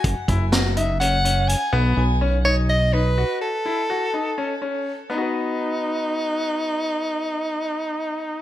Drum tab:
HH |xxxxxxx|-------|-------|-------|
SD |--o----|-------|-------|-------|
BD |oo-----|-------|-------|-------|

HH |-------|
SD |-------|
BD |-------|